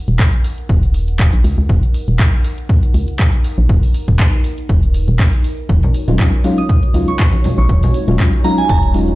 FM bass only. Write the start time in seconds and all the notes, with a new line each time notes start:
0.08 D#1
0.69 D#1
1.33 A#1
1.44 C#2
1.58 C#2
1.69 D#1
2.08 D#1
2.94 C#2
3.58 A#1
3.69 D#1
4.08 D#1
4.69 D#1
5.08 D#1
5.69 D#1
6.08 D#1
6.94 C#2
7.58 A#1
7.69 D#1
8.08 D#1
8.69 D#1